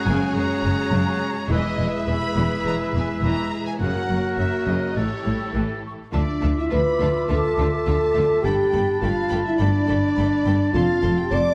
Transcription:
Already playing: G#3 C#4 F#4 G#4 C#5 F#6
0.06 F#1 F#2 C#3 G#5
0.34 F#1 F#2 G#3 G#4 C#5 A#5 F#6
0.63 F#1 F#2 F#3
0.92 F#1 F#2 C#3
1.49 E1 E2 E3 G#4 B4 D#5 E5 E6
1.54 E4
1.78 E1 E2 G#3
1.96 E5
2.07 E1 E2 E3 G#4 B4 B5 E6
2.35 E1 E2 E3
2.64 E1 E2 G#3 A#5
2.93 E1 E2 E3
2.97 G#5
3.22 E1 E2 E3 A#5
3.66 G#5
3.80 F#1 F#2 C#3 A#3 F#4 A#4 C#5 F#5 F#6
4.09 F#1 F#2 A#3
4.38 F#1 F#2 F#3 E5
4.67 F#1 F#2 C#3 D#5
4.96 A1 A2 A3 E4 G4 A4 C#5 E6
5.25 A1 A2 G3
5.53 A1 A2 E3 E6
5.87 C#6
6.12 D2 D3 A3 F4 D5 E5 A5 D6
6.17 D4
6.41 D2 D3 A3 F4 E5 A5
6.58 E4 E5
6.70 D2 D3 A3 F4 B4 E5 A5 B5
6.99 D2 D3 A3 F4 E5 A5
7.29 D2 D3 A3 F4 A4 E5 A5
7.57 D2 D3 A3 F4 E5 A5
7.72 A4 A5
7.85 D2 D3 A3 F4 E5 A5
8.14 D2 D3 A3 F4 E5 A5
8.43 G1 G2 A3 D4 G4 A4 G5 A5 B5
8.73 G1 G2 A3 A4 G5 B5
9.01 G1 G2 A3 F4 A4 F5 G5 B5
9.29 G1 G2 A3 A4 G5 B5
9.45 E4 E5
9.58 G1 G2 A3 D4 A4 D5 G5 B5
9.87 G1 G2 A3 A4 G5 B5
10.17 G1 G2 A3 A4 G5 B5
10.45 G1 G2 A3 A4 G5 B5
10.73 F1 F2 C4 F4 A4 F5 A5 C6
11.02 F1 F2 C4 A4 A5 C6
11.18 G5
11.22 G4
11.31 F1 F2 C4 A4 D5 A5 C6 D6

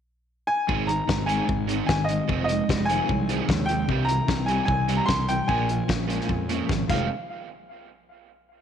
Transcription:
0.47 G#5
0.68 G#1 G#2 D#3 G#3, kick
0.87 G#2 D#3 D#4 A#5, closed hi-hat
1.08 G#1 G#2 D#3 C4, kick, snare
1.26 G#2 D#3 G#3 G#5, closed hi-hat
1.47 G#1 G#2 D#3, kick
1.67 G#2 D#3 G#3 C4, closed hi-hat
1.87 G#1 G#2 D#3 G#5, kick, snare
1.91 D#3
2.05 D#5
2.09 G#2 D#3, closed hi-hat
2.13 G#3
2.28 F1 F3 G#3 C4, kick
2.32 F2
2.44 D#5
2.49 F3 G#3 D#4, closed hi-hat
2.69 F1 F3 G#3, kick, snare
2.85 F3 G#3 G#5, closed hi-hat
2.90 D#3 C4
3.09 C2 C3 F3 G#3, kick
3.29 F3 G#3 C4, closed hi-hat
3.49 D#2 C3 F3 G#3, kick, snare
3.66 D#3 F3 G5, closed hi-hat
3.70 G#3
3.88 C2 C3 E3 G3, kick
4.05 C3 E4 A#5, closed hi-hat
4.09 E3
4.27 C2 C3 E3 C4, kick, snare
4.46 C3 E3 G3 G#5, closed hi-hat
4.65 C2 C3 E3 G#5, kick
4.88 C3 E3 G3 C4, closed hi-hat
4.97 A#5
5.06 C2 C3 E3 C6, kick, snare
5.29 C3 E3 G3 G5, closed hi-hat
5.48 A#1 A#2 F3 A#3 G#5, kick
5.68 A#2 F3 F4, closed hi-hat
5.88 A#1 A#2 F3 C#4, kick, snare
6.07 A#2 F3 G#3 A#3, closed hi-hat
6.21 snare
6.29 F2 A#2 F3, kick
6.48 A#2 F3 A#3 C#4, closed hi-hat
6.69 G#1 A#2 F3, kick, snare
6.87 F1 F2 C3 D#3 G#3 C4 F4 F5, kick, crash
6.91 C3 F3 G#3 C4

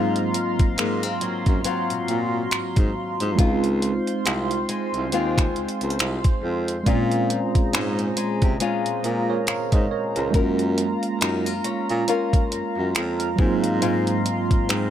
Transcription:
Already playing: G#2 F#3 A#3 C4 F4 F5 A#5 C6
0.16 closed hi-hat
0.34 closed hi-hat
0.59 kick, closed hi-hat
0.78 G#2 A#3, finger snap, closed hi-hat
1.03 C4, closed hi-hat
1.21 F#3, closed hi-hat
1.46 F#2, kick, closed hi-hat
1.64 F#3 C4 F4, closed hi-hat
1.90 A#2, closed hi-hat
2.08 A#2, closed hi-hat
2.51 G#2, finger snap, closed hi-hat
2.76 G#2, kick, closed hi-hat
3.20 G#2, closed hi-hat
3.36 C#2 G#3 C4 F4 C5, kick, closed hi-hat
3.41 D#4 E4
3.49 F4
3.64 closed hi-hat
3.82 closed hi-hat
4.07 closed hi-hat
4.26 C2 C4, finger snap, closed hi-hat
4.51 closed hi-hat
4.69 G#3, closed hi-hat
4.94 C2, closed hi-hat
5.12 D#2 G#3 C4 F4, closed hi-hat
5.38 finger snap, kick, closed hi-hat
5.56 C#2, closed hi-hat
5.69 closed hi-hat
5.81 C#2, closed hi-hat
5.90 closed hi-hat
5.99 C2, finger snap, closed hi-hat
6.24 kick, closed hi-hat
6.43 F2
6.68 closed hi-hat
6.83 A#2 G#3 C4 F4 G#4 A#5, kick, closed hi-hat
6.88 C#4 F4
7.12 closed hi-hat
7.30 closed hi-hat
7.55 kick, closed hi-hat
7.73 G#2 C#4, finger snap, closed hi-hat
7.99 closed hi-hat
8.17 G#3, closed hi-hat
8.42 C3, kick, closed hi-hat
8.60 G#3 C#4 F4, closed hi-hat
8.86 A#2, closed hi-hat
9.04 A#2 A#4, closed hi-hat
9.30 A#4 C#5
9.47 G#2 C#5 F5, finger snap, closed hi-hat
9.72 G#2 C5 D#5, kick, closed hi-hat
9.91 A#4 C#5
10.16 C#2 A#4, closed hi-hat
10.31 F#2 G#3 A#3 F4 A#4 F5, kick, closed hi-hat
10.36 C#4 F4
10.59 closed hi-hat
10.78 closed hi-hat
11.03 closed hi-hat
11.21 F#2 D#4, finger snap, closed hi-hat
11.46 F4, closed hi-hat
11.64 C#4, closed hi-hat
11.89 A#2, closed hi-hat
12.08 C#4 F4 A#4, closed hi-hat
12.33 kick, closed hi-hat
12.52 F#2, closed hi-hat
12.77 F#2
12.95 F2, finger snap, closed hi-hat
13.20 closed hi-hat
13.36 G#2 F#3 A#3 C6, kick
13.41 C4 F4
13.64 closed hi-hat
13.82 G#2 F4, closed hi-hat
14.07 closed hi-hat
14.26 closed hi-hat
14.51 kick, closed hi-hat
14.69 G#2 C4, finger snap, closed hi-hat

